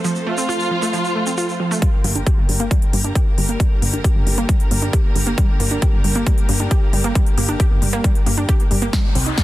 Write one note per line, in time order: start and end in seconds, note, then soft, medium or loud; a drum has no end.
0.00 1.79 F3 medium
0.00 1.79 A3 medium
0.00 1.78 C4 medium
0.00 1.79 A4 medium
0.00 1.78 C5 medium
0.04 0.12 F3 loud
0.04 shaker medium
0.15 shaker soft
0.26 0.34 A3 medium
0.26 1.73 F4 loud
0.38 0.45 C4 medium
0.38 shaker medium
0.49 0.59 F4 medium
0.49 shaker medium
0.60 shaker soft
0.71 0.82 F3 medium
0.82 0.90 A3 loud
0.82 shaker medium
0.93 1.01 F3 loud
0.93 shaker medium
1.05 shaker soft
1.15 1.23 A3 medium
1.26 1.34 C4 medium
1.26 shaker medium
1.37 1.48 F4 loud
1.37 shaker medium
1.49 shaker soft
1.60 1.70 F3 medium
1.71 1.79 A3 medium
1.71 shaker medium
1.82 8.89 D3 medium
1.82 8.89 G3 medium
1.82 1.90 G3 loud
1.82 8.89 A#3 medium
1.82 9.44 G4 medium
1.82 8.89 A#4 medium
1.82 kick loud
1.82 closed hi-hat medium
2.04 2.23 G1 loud
2.04 2.12 A#3 medium
2.04 open hi-hat medium
2.15 2.23 D4 medium
2.15 closed hi-hat medium
2.26 2.37 G4 loud
2.26 kick loud
2.26 closed hi-hat medium
2.38 2.47 G1 medium
2.49 2.68 G1 medium
2.49 2.59 G3 medium
2.49 open hi-hat medium
2.60 2.67 A#3 loud
2.60 closed hi-hat medium
2.71 2.79 G3 loud
2.71 kick loud
2.71 closed hi-hat medium
2.82 closed hi-hat soft
2.93 3.12 G2 loud
2.93 3.01 A#3 medium
2.93 open hi-hat loud
3.04 3.12 D4 medium
3.04 closed hi-hat medium
3.15 3.26 G4 loud
3.15 kick loud
3.15 closed hi-hat medium
3.38 3.57 G1 medium
3.38 3.48 G3 medium
3.38 open hi-hat medium
3.49 3.56 A#3 medium
3.49 closed hi-hat medium
3.60 3.68 G3 loud
3.60 kick loud
3.60 closed hi-hat medium
3.82 4.01 G1 medium
3.82 3.90 A#3 medium
3.82 open hi-hat loud
3.93 4.01 D4 medium
3.93 closed hi-hat medium
4.04 4.15 G4 loud
4.04 kick loud
4.04 closed hi-hat medium
4.16 4.25 G1 medium
4.27 4.45 G1 loud
4.27 4.37 G3 medium
4.27 open hi-hat medium
4.38 4.45 A#3 loud
4.38 closed hi-hat soft
4.49 4.56 G3 loud
4.49 kick loud
4.49 closed hi-hat medium
4.60 closed hi-hat soft
4.71 4.90 G2 loud
4.71 4.79 A#3 medium
4.71 open hi-hat loud
4.82 4.90 D4 medium
4.82 closed hi-hat medium
4.93 5.04 G4 loud
4.93 kick loud
4.93 closed hi-hat medium
5.16 5.34 G1 medium
5.16 5.26 G3 medium
5.16 open hi-hat loud
5.27 5.34 A#3 loud
5.27 closed hi-hat soft
5.38 5.45 G3 loud
5.38 kick loud
5.38 closed hi-hat medium
5.60 5.79 G1 medium
5.60 5.68 A#3 medium
5.60 open hi-hat loud
5.71 5.79 D4 medium
5.71 closed hi-hat medium
5.82 5.93 G4 loud
5.82 kick loud
5.82 closed hi-hat medium
5.93 6.03 G1 medium
6.04 6.23 G1 medium
6.04 6.15 G3 medium
6.04 open hi-hat medium
6.15 6.23 A#3 loud
6.15 closed hi-hat soft
6.27 6.34 G3 loud
6.27 kick loud
6.27 closed hi-hat medium
6.38 closed hi-hat soft
6.49 6.68 G2 loud
6.49 6.56 A#3 medium
6.49 open hi-hat loud
6.60 6.68 D4 medium
6.60 closed hi-hat soft
6.71 6.82 G4 loud
6.71 kick loud
6.71 closed hi-hat medium
6.93 7.12 G1 medium
6.93 7.04 G3 medium
6.93 open hi-hat medium
7.04 7.12 A#3 loud
7.04 closed hi-hat soft
7.15 7.23 G3 loud
7.15 kick loud
7.15 closed hi-hat medium
7.26 closed hi-hat soft
7.38 7.57 G1 loud
7.38 7.45 A#3 medium
7.38 open hi-hat loud
7.49 7.56 D4 medium
7.49 closed hi-hat medium
7.60 7.70 G4 loud
7.60 kick loud
7.60 closed hi-hat medium
7.71 7.81 G1 medium
7.82 8.01 G1 medium
7.82 7.93 G3 medium
7.82 open hi-hat medium
7.93 8.01 A#3 loud
7.93 closed hi-hat soft
8.04 8.12 G3 loud
8.04 kick loud
8.04 closed hi-hat medium
8.15 closed hi-hat soft
8.26 8.45 G2 medium
8.26 8.34 A#3 medium
8.26 open hi-hat loud
8.38 8.45 D4 medium
8.38 closed hi-hat soft
8.49 8.59 G4 loud
8.49 kick loud
8.49 closed hi-hat medium
8.60 closed hi-hat soft
8.71 8.90 G1 medium
8.71 8.82 G3 medium
8.71 open hi-hat medium
8.82 8.90 A#3 loud
8.82 closed hi-hat soft
8.93 9.44 C3 medium
8.93 9.44 D#3 medium
8.93 9.01 G3 loud
8.93 9.44 G3 medium
8.93 9.44 D#4 medium
8.93 kick loud
8.93 snare soft
8.93 closed hi-hat medium
8.93 riser medium
9.15 9.34 C2 medium
9.15 9.23 C4 medium
9.15 open hi-hat loud
9.26 9.34 D#4 medium
9.26 closed hi-hat medium
9.38 9.44 G4 medium
9.38 kick loud
9.38 snare soft
9.38 closed hi-hat medium